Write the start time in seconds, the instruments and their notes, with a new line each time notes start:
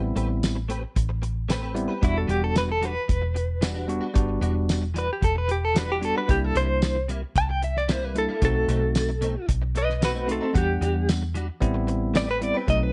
Already playing: fingered electric bass A1, tine electric piano G3 B3 C4 E4, clean electric guitar B4
0.03 muted clean electric guitar stroke
0.16 fingered electric bass A1, clean electric guitar A3 C4 G4 B4, closed hi-hat
0.29 muted clean electric guitar stroke
0.43 snare, closed hi-hat, tambourine
0.55 muted clean electric guitar stroke
0.69 clean electric guitar A3 C4 G4 B4, closed hi-hat
0.83 muted clean electric guitar stroke
0.96 fingered electric bass A1, muted clean electric guitar stroke, kick, closed hi-hat
1.09 muted clean electric guitar stroke
1.22 muted clean electric guitar stroke, closed hi-hat
1.49 clean electric guitar A3 C4 G4 B4, snare, closed hi-hat, tambourine
1.62 clean electric guitar A3 C4 G4 B4
1.74 tine electric piano G3 B3 C4 E4, muted clean electric guitar stroke, closed hi-hat
1.88 clean electric guitar C4 G4 B4
2.01 fingered electric bass E1, clean electric guitar E3 G3 D4 E4 F#4, tine electric piano G3 B3 D4 F#4, kick, closed hi-hat
2.15 clean electric guitar A4, muted clean electric guitar stroke
2.28 fingered electric bass E1, clean electric guitar E3 G3 D4 F#4 G4, closed hi-hat
2.42 clean electric guitar A4, muted clean electric guitar stroke
2.56 clean electric guitar B4, snare, closed hi-hat, tambourine
2.68 clean electric guitar A4, muted clean electric guitar stroke
2.81 clean electric guitar E3 G3 D4 F#4, closed hi-hat
2.85 clean electric guitar B4
2.95 muted clean electric guitar stroke
3.08 fingered electric bass E1, muted clean electric guitar stroke, kick, closed hi-hat
3.22 muted clean electric guitar stroke
3.34 muted clean electric guitar stroke, closed hi-hat
3.61 clean electric guitar E3 G3 D4 F#4, snare, closed hi-hat, tambourine
3.75 clean electric guitar E3 G3 D4 F#4
3.88 tine electric piano G3 B3 D4 F#4, muted clean electric guitar stroke, closed hi-hat
4.01 clean electric guitar G3 D4 F#4
4.14 fingered electric bass G1, tine electric piano G3 B3 D4 F#4, kick, closed hi-hat
4.28 muted clean electric guitar stroke
4.41 fingered electric bass E1, clean electric guitar E3 G3 D4 F#4, closed hi-hat
4.55 muted clean electric guitar stroke
4.69 snare, closed hi-hat, tambourine
4.82 muted clean electric guitar stroke
4.94 clean electric guitar E3 G3 D4 F#4, closed hi-hat
4.98 clean electric guitar B4
5.08 muted clean electric guitar stroke
5.13 clean electric guitar G4
5.21 fingered electric bass E1, clean electric guitar A4, muted clean electric guitar stroke, kick, closed hi-hat
5.35 clean electric guitar B4, muted clean electric guitar stroke
5.48 clean electric guitar G4, muted clean electric guitar stroke, closed hi-hat
5.65 clean electric guitar A4
5.74 clean electric guitar E3 G3 D4 F#4 B4, snare, closed hi-hat, tambourine
5.88 clean electric guitar E3 G3 D4 F#4 G4
6.01 tine electric piano G3 B3 D4 F#4, clean electric guitar A4, muted clean electric guitar stroke, closed hi-hat
6.15 clean electric guitar G3 D4 F#4 B4
6.28 fingered electric bass C2, clean electric guitar C3 G3 A#3 E4 G4, tine electric piano G3 A#3 D4 E4, kick, closed hi-hat
6.42 clean electric guitar A4, muted clean electric guitar stroke
6.55 fingered electric bass C2, clean electric guitar C3 G3 A#3 E4 C5, closed hi-hat
6.69 muted clean electric guitar stroke
6.82 snare, closed hi-hat, tambourine
6.95 muted clean electric guitar stroke
7.08 clean electric guitar C3 G3 A#3 E4, closed hi-hat
7.22 muted clean electric guitar stroke
7.35 fingered electric bass C2, clean electric guitar A5, muted clean electric guitar stroke, kick, closed hi-hat
7.49 clean electric guitar G5, muted clean electric guitar stroke
7.62 clean electric guitar E5, muted clean electric guitar stroke, closed hi-hat
7.77 clean electric guitar D5, snare
7.88 clean electric guitar C3 G3 A#3 E4 C5, snare, closed hi-hat, tambourine
8.02 clean electric guitar C3 G3 A#3 E4 B4
8.15 tine electric piano G3 A#3 D4 E4, clean electric guitar A4, muted clean electric guitar stroke, closed hi-hat
8.29 clean electric guitar G3 A#3 E4
8.41 fingered electric bass B1, clean electric guitar B2 A3 C4 D#4 A4, tine electric piano A3 C4 D#4 F#4, kick, closed hi-hat
8.56 muted clean electric guitar stroke
8.68 fingered electric bass B1, clean electric guitar B2 A3 C4 D#4, closed hi-hat
8.83 muted clean electric guitar stroke
8.95 snare, closed hi-hat, tambourine
9.09 muted clean electric guitar stroke
9.21 clean electric guitar B2 A3 C4 D#4, closed hi-hat
9.35 muted clean electric guitar stroke
9.48 fingered electric bass B1, muted clean electric guitar stroke, kick, closed hi-hat
9.62 muted clean electric guitar stroke
9.75 clean electric guitar B4 D#5, muted clean electric guitar stroke, closed hi-hat
9.90 snare
10.01 clean electric guitar B2 A3 C4 D#4 F#4 B4, snare, closed hi-hat, tambourine
10.14 clean electric guitar B2 A3 C4 D#4
10.27 tine electric piano A3 C4 D#4 F#4, muted clean electric guitar stroke, closed hi-hat
10.31 clean electric guitar C4 A4
10.41 clean electric guitar A3 C4 D#4
10.53 fingered electric bass E2, clean electric guitar E3 G3 D4 F#4, tine electric piano G3 B3 D4 F#5, kick, closed hi-hat
10.58 clean electric guitar G4
10.68 muted clean electric guitar stroke
10.81 fingered electric bass E2, clean electric guitar E3 G3 D4 F#4, closed hi-hat
10.95 muted clean electric guitar stroke
11.09 snare, closed hi-hat, tambourine
11.22 muted clean electric guitar stroke
11.35 clean electric guitar E3 G3 D4 F#4, closed hi-hat
11.48 muted clean electric guitar stroke
11.60 fingered electric bass A1, tine electric piano G3 B3 C4 E4, muted clean electric guitar stroke, kick, closed hi-hat
11.74 muted clean electric guitar stroke
11.87 muted clean electric guitar stroke, closed hi-hat
12.14 clean electric guitar A3 C4 G4 B4 D5, snare, closed hi-hat, tambourine
12.28 clean electric guitar A3 C4 G4 B4
12.41 tine electric piano G3 B3 C4 E4, clean electric guitar D5, muted clean electric guitar stroke, closed hi-hat
12.54 clean electric guitar C4 G4 B4
12.67 fingered electric bass B1, clean electric guitar B2 A3 C4 D#4 D#5, tine electric piano F#3 A3 C4 D#4, kick, closed hi-hat
12.80 clean electric guitar B4, muted clean electric guitar stroke